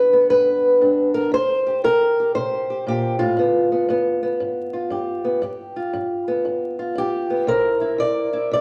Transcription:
Already playing: G2 D3 B3 D4 B4
0.13 B3
0.30 G2 B4
0.81 G2 D4
1.14 A#4
1.32 C3 C5
1.67 G4
1.84 C3 A#4
2.20 G4
2.35 C3 C5
2.70 G4
2.87 A#2 G4
3.19 A2 F4
3.37 G2 B3
3.72 B3
3.89 G2 B3
4.23 B3
4.40 G2
4.73 F4
4.90 G2 G4
5.25 B3
5.42 G2 G4
5.76 F4
5.93 G2
6.28 B3
6.45 G2
6.79 F4
6.95 G2 G4
7.30 B3
7.47 C3 C4 E4 A#4
7.81 E4
7.98 C3 D5
8.33 E4
8.51 C3 D5

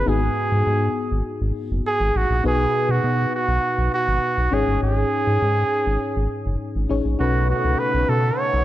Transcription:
0.06 G#1 G#2 B3 D#4 F#4 G#4
0.52 G#2
0.67 G#2
1.11 G#1
1.41 G#1
1.71 F#1
1.87 G#4
2.00 G#1
2.15 A1 F#4
2.30 A#1
2.44 B1 B2 B3 D#4 F#4 G#4 B4
2.89 B2 F#4
3.04 B2
3.35 F#4
3.48 B1
3.78 B1
3.94 F#4
4.08 G#1
4.37 B1
4.51 G#1 G#2 C#4 D#4 G#4 C#5
4.68 G1
4.82 G#1 G#4
5.27 G#2
5.42 G#2
5.86 G#1
6.16 G#1
6.46 F#1
6.76 G#1
6.89 A1 C#4 D#4 G#4 C#5
7.05 A#1
7.19 B1 B2 C#3 A3 B3 C#4 D#4 F#4 A4 B4
7.50 F#4
7.64 C#2
7.79 B4
7.94 B1
8.09 B2 A4
8.39 C#5
8.54 B1

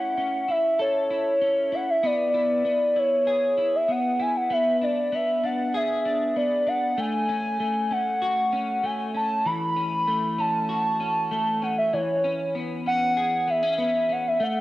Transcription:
Already playing: A3 C#4 E4 A4 F#5
0.17 C#4
0.48 E4 E5
0.79 A4 C#5
1.10 E4
1.41 C#4
1.72 E4 F#5
1.90 E5
2.03 B3 D5
2.34 E4
2.65 B3
2.96 E4 C#5
3.27 G#4
3.58 E4
3.76 E5
3.88 B3 F#5
4.19 E4 G#5
4.37 F#5
4.50 B3 E5
4.81 D4 D5
5.12 B3 E5
5.44 D4 F#5
5.74 G#4 E5
6.05 D4
6.36 B3 D5
6.67 D4 F#5
6.97 A3 G#5
7.29 C#4
7.60 A3
7.91 C#4 F#5
8.22 F#4
8.52 C#4
8.83 A3 G#5
9.14 C#4 A5
9.46 E3 B5
9.76 C#4
10.07 A3
10.38 C#4 A5
10.69 F#4
11.00 C#4
11.31 A3
11.62 C#4 F#5
11.78 E5
11.93 E3 C#5
12.24 C#4
12.55 B3
12.86 C#4 F#5
13.17 G#4
13.48 B3 E5
13.63 C#4
13.78 B3 E5
14.09 C#4 F#5
14.28 E5
14.40 A3 F#5

